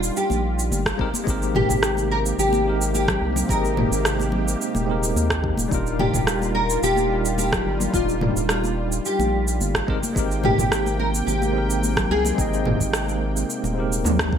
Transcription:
Already playing: D#1 G3 D4 D#4 F4 A#4 D5
0.03 cabasa
0.17 G4, cabasa
0.30 A#1, high conga, cabasa
0.59 cabasa
0.71 G1, high conga, cabasa
0.86 kick, cross-stick, cabasa
0.98 G#1 C3 G#3 A#3 C4 D#4 G4 A#4, kick
1.14 high conga, cabasa
1.24 G#1 G#3 C4 D#4, kick
1.28 G4 A#4, cabasa
1.42 cabasa
1.55 G4, mid tom, high conga
1.69 G#1, kick, mid tom, cabasa
1.83 cross-stick, cabasa
1.97 high conga, cabasa
2.11 A#4
2.26 cabasa
2.38 G#1 G4, cabasa
2.53 high conga, cabasa
2.63 G#3 C4 D#4
2.68 G4 A#4
2.81 cabasa
2.94 G4, high conga, cabasa
3.08 kick, cross-stick, low conga, cabasa
3.22 C2
3.36 high conga, low conga, cabasa
3.46 G#1 G#3 C4 D#4 A#4, kick
3.51 G4 D#5, cabasa
3.65 cabasa
3.77 mid tom, high conga
3.91 G#1, cabasa
4.05 cross-stick, cabasa
4.19 high conga, cabasa
4.32 low conga
4.48 cabasa
4.62 cabasa
4.75 D#1, high conga, cabasa
4.85 G#3 C4 D#4
4.90 G4 A#4
5.03 cabasa
5.16 D#2, high conga, cabasa
5.30 kick, cross-stick, cabasa
5.44 kick
5.57 D#1, high conga, cabasa
5.68 D#1 G3 D4 D#4 F4, kick
5.72 F4 A#4, cabasa
5.87 cabasa
5.99 G4, mid tom, high conga
6.14 D#1, kick, mid tom, cabasa
6.27 cross-stick, cabasa
6.42 high conga, cabasa
6.55 A#4
6.70 cabasa
6.83 D#1 G4, cabasa
6.96 high conga, cabasa
7.07 G3 D4 D#4
7.13 F4 A#4
7.25 cabasa
7.38 G4, high conga, cabasa
7.53 kick, cross-stick, low conga, cabasa
7.66 G1
7.80 high conga, low conga, cabasa
7.90 D#1 G3 D4 D#4 F4, kick, cabasa
7.95 F4 D5
8.09 cabasa
8.21 mid tom, high conga
8.36 D#1, cabasa
8.49 F4, cross-stick, cabasa
8.64 high conga, cabasa
8.92 cabasa
9.05 G4, cabasa
9.19 A#1, high conga, cabasa
9.48 cabasa
9.61 G1, high conga, cabasa
9.75 kick, cross-stick, cabasa
9.87 G#1 C3 G#3 A#3 C4 D#4 G4 A#4 G5, kick
10.03 high conga, cabasa
10.13 G#1 G#3 C4 D#4, kick
10.17 G4 A#4, cabasa
10.31 cabasa
10.44 G4, mid tom, high conga
10.58 G#1, kick, mid tom, cabasa
10.72 cross-stick, cabasa
10.86 high conga, cabasa
11.00 A#4
11.15 cabasa
11.27 G#1 G4, cabasa
11.42 high conga, cabasa
11.52 G#3 C4 D#4
11.57 G4 A#4
11.70 cabasa
11.83 high conga, cabasa
11.97 kick, cross-stick, low conga, cabasa
12.10 C2 G#4
12.25 high conga, low conga, cabasa
12.34 G#1 G#3 C4 D#4, kick
12.39 D#5 G5, cabasa
12.54 cabasa
12.65 mid tom, high conga
12.80 G#1, kick, cabasa
12.93 cross-stick, cabasa
13.09 high conga, cabasa
13.37 cabasa
13.50 cabasa
13.64 D#1, high conga, cabasa
13.74 G#3 C4 D#4
13.79 G4 A#4
13.93 cabasa
14.04 D#2, high tom, high conga, cabasa
14.19 kick, cross-stick, high tom, cabasa
14.33 kick

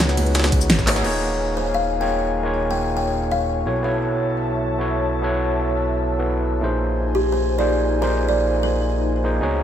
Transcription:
Already playing: C#2 B3 D#4 F#4 G#4 B4 C#5 F#5
0.00 snare, closed hi-hat, shaker
0.09 snare, closed hi-hat, shaker
0.17 closed hi-hat, ride, high conga
0.26 closed hi-hat
0.35 snare, closed hi-hat, shaker
0.39 snare, closed hi-hat
0.44 snare, closed hi-hat, high bongo, shaker
0.52 C#2, kick, closed hi-hat, ride
0.61 shaker
0.70 G#1, snare, closed hi-hat, shaker
0.78 kick, snare, high bongo, shaker
0.86 B3 D#4 F#4 G#4 C#5, clap, closed hi-hat, open hi-hat, ride, high conga
0.96 snare, closed hi-hat, high bongo, shaker
1.03 D#1 A#3 D#4 F4 G#4 C#5 F5 G#5, crash
1.57 C5
1.74 F5
1.99 A#3 D#4 F4 G#4 C#5 G5
2.43 A#3 D#4 F4 G#4 C#5
2.71 G5
2.97 G5
3.31 F5
3.65 B1 B3 E4 F#4 A4 C#5 E5 A5
3.82 B3 E4 F#4 A4 C#5
4.78 B3 E4 F#4 A4 C#5
5.21 B3 E4 F#4 A4 C#5
6.18 B3 E4 F#4 A4 B4
6.61 A#1 A#3 D#4 F4 G#4 C5 G#5
7.15 G4
7.32 C5
7.58 A#3 D#4 F4 G#4 C5 D5
8.01 A#3 D#4 F4 G#4 C5
8.29 D5
8.63 A#4
9.24 A#3 D#4 F4 G#4 C5
9.40 C#2 B3 D#4 F#4 G#4 B4 C#5 F#5, riser

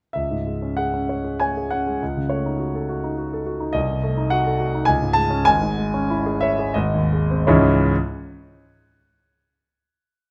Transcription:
0.13 C#2 E5
0.31 G#2
0.47 G#3
0.62 C#4
0.77 G#4 F#5
0.94 C#4
1.09 C#5
1.24 G#4
1.40 C#5 G#5
1.57 G#4
1.71 C#4 F#5
1.87 G#3
2.02 C#2
2.17 C#3
2.29 A3 C#5
2.46 D#4
2.59 F#4
2.75 A4
2.89 F#4
3.04 D#4
3.18 F#4
3.33 A4
3.46 F#4
3.60 D#4
3.73 C2 D#5
3.90 C3
4.03 A3
4.17 D#4
4.30 F#4 F#5
4.47 A4
4.60 F#4
4.75 D#4
4.85 C#2 G#5
5.02 G#2
5.13 G#3 A5
5.30 C#4
5.45 G#1 G#5
5.62 G#2
5.78 G#3
5.94 C#4
6.10 E4
6.26 G#4
6.41 C#5 E5
6.59 G#4
6.74 G#1 D#5
6.94 D#2
7.13 G#3
7.31 C4
7.47 C#2 G#2 E3 G#3 C#4 E4 C#5

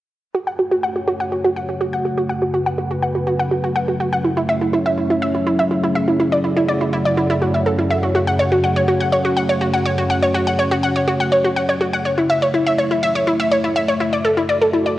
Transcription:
0.34 F#2 C#3 A3 F#4 C#5 F#5
0.47 F#5
0.59 F#4
0.71 F#4
0.83 F#5
0.96 F#4
1.08 F#4
1.20 F#5
1.32 F#4
1.45 F#4
1.56 F#5
1.69 F#4
1.81 F#4
1.93 F#5
2.05 F#4
2.18 F#4
2.29 B4 F#5
2.42 F#4
2.54 F#4
2.66 F#5
2.78 F#4
2.91 F#4
3.03 F#5
3.15 F#4
3.27 F#4
3.40 F#5
3.51 F#4
3.64 F#4
3.76 F#5
3.88 F#4
4.00 F#4
4.13 F#5
4.25 E4 C#5 E5
4.37 E4
4.49 E5
4.61 E4
4.73 E4
4.86 E5
4.98 E4
5.10 E4
5.22 E5
5.35 E4
5.47 E4
5.59 E5
5.71 E4
5.84 E4
5.95 E5
6.08 E4
6.20 E4 D5 F#5
6.32 D5
6.44 E4
6.57 E4
6.68 D5
6.81 E4
6.93 E4
7.05 D5
7.17 E4
7.30 E4
7.42 F#4
7.54 E5
7.66 A4
7.79 E4
7.90 E5
8.03 F#4
8.15 F#4 C#5
8.27 F#5
8.39 C#5
8.52 F#4
8.64 F#5
8.76 C#5
8.88 F#4
9.00 F#5
9.12 C#5
9.25 F#4
9.37 F#5
9.49 C#5
9.61 F#4
9.74 F#5
9.86 C#5
9.98 F#4
10.10 F#5
10.22 C#5
10.34 F#4
10.47 F#5
10.59 C#5
10.71 F#4
10.83 F#5
10.96 C#5
11.08 F#4
11.20 F#5
11.32 C#5
11.44 F#4
11.56 F#5
11.69 C#5
11.81 F#4
11.93 F#5
12.05 A3 E4 C#5 E5
12.18 E4
12.30 E5
12.42 C#5
12.54 E4
12.66 E5
12.78 C#5
12.91 E4
13.03 E5
13.15 C#5
13.27 E4
13.40 E5
13.52 C#5
13.64 E4
13.76 E5
13.88 C#5
14.00 E4 F#4 D5
14.13 D5
14.25 A4
14.37 E4
14.49 D5
14.62 A4
14.73 E4
14.86 D5

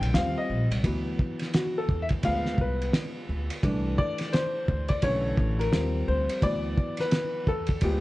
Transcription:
Already playing: D3 E3 A3 C#4 G5
0.01 B1, ride
0.14 D#2 F3 G3 C4 F5, snare, hi-hat pedal, ride
0.38 D#5
0.50 A#1
0.71 C2, ride
0.84 D2 E3 F#3 B3, kick, ride
1.19 kick
1.39 snare, ride
1.54 F#4, snare, hi-hat pedal, ride
1.78 A4
1.89 E2, kick
2.02 E5
2.09 kick, ride
2.23 D2 F3 G#3 B3 F5, kick, ride
2.45 snare
2.58 C2 B4, kick
2.82 ride
2.93 snare, hi-hat pedal, ride
3.29 D2
3.50 ride
3.63 C2 E3 A3 D4, kick, ride
3.98 D5, kick
4.18 snare, ride
4.33 C5, snare, hi-hat pedal, ride
4.68 D2, kick
4.88 D5, kick, ride
5.02 B1 D3 E3 A3 C#4 C#5, kick, ride
5.37 A1, kick
5.59 A#4, ride
5.72 D#2 F3 G3 C4, snare, hi-hat pedal, ride
6.08 D2 C5
6.29 ride
6.42 D2 E3 F#3 B3 D5, kick, ride
6.78 kick
6.97 B4, snare, ride
7.11 snare, hi-hat pedal, ride
7.47 E2 A4, kick
7.67 kick, ride
7.81 D2 F3 G#3 B3 G4, kick, ride

